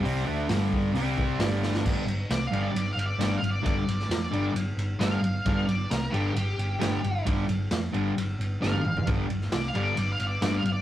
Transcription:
<<
  \new Staff \with { instrumentName = "Lead electric guitar" } { \time 4/4 \key c \major \tempo 4 = 133 r1 | r4 \tuplet 3/2 { d''8 f''8 d''8 d''8 f''8 d''8 d''8 f''8 d''8 } | d''2 r4 f''4~ | f''8 d''8 bes'8 g'8 g'2 |
r2. f''4 | r4 \tuplet 3/2 { d''8 f''8 d''8 d''8 f''8 d''8 d''8 f''8 d''8 } | }
  \new Staff \with { instrumentName = "Distorted electric guitar" } { \clef bass \time 4/4 \key c \major <c g c'>8 <d a d'>8 <g, d g>4 <c g c'>4 <g, d g>4 | <g, d g>8 r4 <g, d g>8 r4 <g, d g>8 r8 | <g, d g>8 r4 <g, d g>8 r4 <g, d g>8 r8 | <g, d g>8 r4 <g, d g>8 r4 <g, d g>8 r8 |
<g, d g>8 r4 <g, d g>8 r4 <g, d g>8 r8 | <g, d g>8 r4 <g, d g>8 r4 <g, d g>8 r8 | }
  \new Staff \with { instrumentName = "Picked electric bass" } { \clef bass \time 4/4 \key c \major c,8 d,8 g,,4 c,4 g,,4 | g,,8 g,,8 c,8 g,,8 g,,8 g,,8 g,,8 g,,8 | g,,8 g,,8 f,8 g,,8 g,,8 g,,8 g,,8 g,,8 | g,,8 g,,8 c,8 g,,8 g,,8 g,,8 g,,8 g,,8 |
g,,8 g,,8 f,8 g,,8 g,,8 g,,8 g,,8 g,,8 | g,,8 g,,8 c,8 g,,8 g,,8 g,,8 g,,8 g,,8 | }
  \new DrumStaff \with { instrumentName = "Drums" } \drummode { \time 4/4 hho4 <hho sn>8 bd8 hho8 bd8 <hho sn>8 sn16 sn16 | <cymc bd>8 cymr8 <cymr sn>8 cymr8 cymr8 cymr8 <cymr sn>8 cymr8 | <bd cymr>8 cymr16 sn16 <cymr sn>8 cymr8 cymr8 cymr8 <cymr sn>8 cymr8 | <bd cymr>8 cymr8 <cymr sn>8 cymr8 cymr8 cymr8 <cymr sn>8 cymr8 |
<bd cymr>8 cymr8 <cymr sn>8 cymr8 cymr8 cymr8 sn16 tommh16 toml16 tomfh16 | <bd cymr>8 cymr16 sn16 <cymr sn>8 cymr8 cymr8 cymr8 <cymr sn>8 cymr8 | }
>>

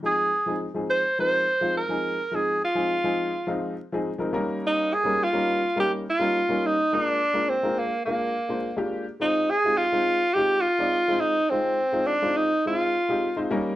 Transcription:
<<
  \new Staff \with { instrumentName = "Tenor saxophone" } { \time 4/4 \key aes \lydian \tempo 4 = 105 aes'4 r8 c''8 c''4 bes'4 | aes'8 f'2 r4. | ees'8 aes'8 f'4 g'8 f'4 ees'8 | d'4 c'8 bes8 bes4. r8 |
ees'8 aes'8 f'4 g'8 f'4 ees'8 | c'4 d'8 ees'8 f'4. r8 | }
  \new Staff \with { instrumentName = "Upright piano" } { \time 4/4 \key aes \lydian <f aes c' ees' aes'>8 r16 <f aes c' ees' aes'>16 r16 <f aes c' ees' aes'>8 r16 <f aes c' ees' bes'>8 r16 <f aes c' ees' f'>16 r16 <f aes c' ees' aes'>8 r16 | <f aes c' ees' aes'>8 r16 <f aes c' ees' aes'>16 r16 <f aes c' ees' aes'>8 r16 <f aes c' ees' f'>8 r16 <f aes c' ees' aes'>16 r16 <f aes c' ees' bes'>16 <g bes des' ees' bes'>8~ | <g bes des' ees' bes'>8 r16 <g bes des' ees' bes'>16 r16 <g bes des' ees' bes'>8 r16 <g bes des' ees' bes'>8 r16 <g bes des' ees' bes'>16 r16 <g bes des' ees' bes'>8 r16 | <aes bes d' f' bes'>8 r16 <aes bes d' f' bes'>16 r16 <aes bes d' f' bes'>8 r16 <aes bes d' f' bes'>8 r16 <aes bes d' f' c''>16 r16 <aes bes d' f' g'>8 r16 |
<aes c' ees' f' c''>8 r16 <aes c' ees' f' g'>16 r16 <aes c' ees' f' c''>8 r16 <aes c' ees' f' g'>8 r16 <aes c' ees' f' d''>16 r16 <aes c' ees' f' c''>8 r16 | <aes c' ees' f' c''>8 r16 <aes c' ees' f' c''>16 r16 <aes c' ees' f' c''>8 r16 <aes c' ees' f' c''>8 r16 <aes c' ees' f' g'>16 r16 <aes c' ees' f' c''>16 <g bes des' ees' bes'>8 | }
>>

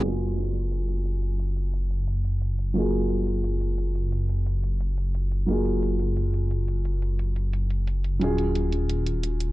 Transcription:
<<
  \new Staff \with { instrumentName = "Felt piano" } { \time 4/4 \key fis \major \tempo 4 = 176 <fis ais gis'>1~ | <fis ais gis'>1 | <fis ais eis' gis'>1~ | <fis ais eis' gis'>1 |
<fis ais eis' gis'>1~ | <fis ais eis' gis'>1 | <fis cis' eis' gis'>1 | }
  \new Staff \with { instrumentName = "Detuned saw bass" } { \clef bass \time 4/4 \key fis \major fis,,1~ | fis,,1~ | fis,,1~ | fis,,1 |
fis,,1~ | fis,,1 | dis,,1 | }
  \new DrumStaff \with { instrumentName = "Drums" } \drummode { \time 4/4 hh8 hh8 hh8 hh8 hh8 hh8 hh8 hh8 | hh8 hh8 hh8 hh8 hh8 hh8 hh8 hh8 | hh8 hh8 hh8 hh8 hh8 hh8 hh8 hh8 | hh8 hh8 hh8 hh8 hh8 hh8 hh8 hh8 |
hh8 hh8 hh8 hh8 hh8 hh8 hh8 hh8 | hh8 hh8 hh8 hh8 hh8 hh8 hh8 hh8 | hh8 hh8 hh8 hh8 hh8 hh8 hh8 hh8 | }
>>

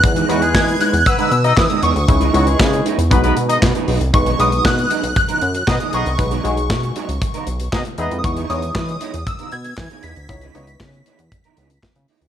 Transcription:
<<
  \new Staff \with { instrumentName = "Synth bell" } { \time 4/4 \key b \major \tempo 4 = 117 fis'''4 gis'''8 fis'''8 e'''8 e'''8 dis'''8 cis'''8~ | cis'''4 r2. | cis'''8 dis'''8 fis'''4 fis'''4 dis'''8 cis'''8~ | cis'''2~ cis'''8 r4 r16. dis'''32 |
cis'''8 dis'''8 dis'''4 e'''8 gis'''4 b'''8~ | b'''2. r4 | }
  \new Staff \with { instrumentName = "Horn section" } { \time 4/4 \key b \major r8 <fis fis'>16 <gis gis'>8. r8 <b b'>16 <b b'>16 r16 <dis' dis''>16 r4 | r8 <fis fis'>16 <gis gis'>8. r8 <b b'>16 <b b'>16 r16 <dis' dis''>16 r4 | r2. <b dis' gis' dis''>16 r16 <b dis' gis' dis''>8 | r2. <b dis' gis' dis''>16 r16 <b dis' gis' dis''>8 |
r1 | r1 | }
  \new Staff \with { instrumentName = "Analog polysynth" } { \time 4/4 \key b \major <gis b dis' e' b'>8 <gis b dis' e' b'>4. r2 | <gis cis' dis' e' b'>8 <gis cis' dis' e' b'>4. <gis b dis' fis' b'>4. r8 | <gis dis' fis' b'>8 <gis dis' fis' b'>4. r2 | <gis dis' fis' b'>8 <gis dis' fis' gis'>4. r4. <gis dis' e' b'>8~ |
<gis dis' e' b'>8 <gis dis' e' cis''>4. r2 | <b dis' e' cis''>8 <b dis' e' cis''>4. r2 | }
  \new Staff \with { instrumentName = "Clean electric guitar" } { \time 4/4 \key b \major r16 <gis b dis' gis'>16 <gis b dis' gis'>16 r8. <gis b dis' gis'>16 r8 <gis b dis' ais'>16 r8. <gis b dis' gis'>16 <gis b dis' gis'>16 r16 | r16 <e b dis' gis'>16 <e b dis' gis'>16 r8. <e b dis' gis'>16 r8 <fis b dis' ais'>16 r8. <fis b dis' gis'>16 <fis b dis' gis'>16 r16 | r16 <fis b dis' gis'>16 <fis b dis' gis'>16 r8. <fis b dis' gis'>16 r8 <fis b dis' ais'>16 r8. <fis b dis' gis'>16 <fis b dis' gis'>16 r16 | r16 <fis b dis' gis'>16 <fis b dis' gis'>16 r8. <fis b dis' gis'>16 r8 <fis b dis' ais'>16 r4. |
r16 <e b dis' gis'>16 <e b dis' gis'>16 r8. <e b dis' gis'>16 r8 <e b dis' ais'>16 r8. <e b dis' gis'>16 <e b dis' gis'>16 r16 | r16 <e b dis' gis'>16 <e b dis' gis'>16 r8. <e b dis' gis'>16 r8 <e b dis' ais'>16 <e b dis' gis'>16 r8. <e b dis' gis'>16 r16 | }
  \new Staff \with { instrumentName = "Analog synth bass" } { \clef bass \time 4/4 \key b \major e,8 e,8 e8 r16 e,16 r8 b,8 e16 r16 e,16 d,16 | cis,8 cis,8 cis8 r16 e,16 b,,8 b,8 b,16 r16 b,,16 c,16 | b,,8 b,,8 b,8 r16 b,,16 r8 fis,8 b,16 r16 b,,16 c,16 | b,,8 b,,8 b,8 r16 cis,16 r8 b,,8 b,16 r16 e,16 eis,16 |
e,8 e,8 e8 r16 e,16 r8 b,8 e16 r16 e,16 d,16 | cis,8 cis,8 cis8 r16 e,16 r8 cis,8 r16 cis16 r16 d,16 | }
  \new DrumStaff \with { instrumentName = "Drums" } \drummode { \time 4/4 <hh bd>16 hh16 hh16 hh16 <hc bd sn>16 hh16 hh16 hh16 <hh bd>16 hh16 hh16 hh16 <hc bd sn>16 hh16 hh16 hh16 | <hh bd>16 hh16 hh16 hh16 <hc bd sn>16 hh16 hh16 hh16 <hh bd>16 hh16 hh16 hh16 <hc bd sn>16 hh16 hho16 hh16 | <hh bd>16 hh16 hh16 hh16 <hc bd sn>16 hh16 hh16 hh16 <hh bd>16 hh16 hh16 hh16 <hc bd sn>16 hh16 hh16 hh16 | <hh bd>16 hh16 hh16 hh16 <hc bd sn>16 hh16 hh16 hh16 <hh bd>16 hh16 hh16 hh16 <hc bd sn>16 hh16 hh16 hh16 |
<hh bd>16 hh16 hh16 hh16 <hc bd sn>16 hh16 hh16 hh16 <hh bd>16 hh16 hh16 hh16 <hc bd sn>16 hh16 hh16 hh16 | <hh bd>16 hh16 hh16 hh16 <hc bd sn>16 hh16 hh16 hh16 <hh bd>16 hh16 hh16 hh16 <hc bd sn>16 hh16 hho16 hh16 | }
>>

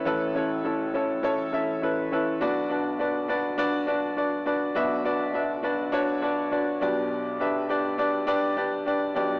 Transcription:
<<
  \new Staff \with { instrumentName = "Grand piano" } { \time 4/4 \key b \minor \tempo 4 = 102 <cis' e' a' b'>8 <cis' e' a' cis''>8 <cis' e' a' cis''>8 <cis' e' a' cis''>8 <cis' e' a' cis''>8 <cis' e' a' e''>8 <cis' e' a' b'>8 <cis' e' a' b'>8 | <d' fis' b' d''>8 <d' fis' b' d''>8 <d' fis' b' d''>8 <d' fis' b' d''>8 <d' fis' b' d''>8 <d' fis' b' d''>8 <d' fis' b' d''>8 <d' fis' b' d''>8 | <d' fis' b' e''>8 <d' fis' b' d''>8 <d' fis' b' e''>8 <d' fis' b' d''>8 <d' fis' b' cis''>8 <d' fis' b' d''>8 <d' fis' b' d''>8 <d' g' b' d''>8~ | <d' g' b' d''>8 <d' g' b' e''>8 <d' g' b' d''>8 <d' g' b' d''>8 <d' g' b' d''>8 <d' g' b' d''>8 <d' g' b' d''>8 <d' g' b' d''>8 | }
  \new Staff \with { instrumentName = "Grand piano" } { \clef bass \time 4/4 \key b \minor <a,, a,>1 | <b,, b,>1 | <b,, b,>2.~ <b,, b,>8 <b,, b,>8~ | <b,, b,>2.~ <b,, b,>8 <b,, b,>8 | }
>>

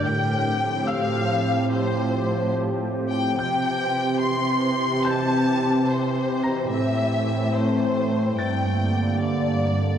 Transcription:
<<
  \new Staff \with { instrumentName = "Grand piano" } { \time 6/8 \key f \major \tempo 4. = 72 g'''4. <f'' e'''>4.~ | <f'' e'''>4. r4. | g'''2. | g'''2~ g'''8 <bes'' bes'''>8~ |
<bes'' bes'''>2~ <bes'' bes'''>8 r8 | a'''2. | }
  \new Staff \with { instrumentName = "Violin section" } { \time 6/8 \key f \major g''4. f''4. | c''4. r4 g''8 | g''4. c'''4. | a''4. c''4. |
e''4. c''4. | g''4. d''4. | }
  \new Staff \with { instrumentName = "Ambient pad" } { \time 6/8 \key f \major << { <f c' c''>2.~ | <f c' c''>2. | <e c' c''>2.~ | <e c' c''>2.~ |
<e c' c''>2. | <d bes d''>2. | } \\ { g'2.~ | g'2. | g'2.~ | g'2. |
a2. | g'2. | } >> }
  \new Staff \with { instrumentName = "Cello section" } { \clef bass \time 6/8 \key f \major a,2.~ | a,2. | c2.~ | c2. |
a,2. | g,2~ g,8 r8 | }
>>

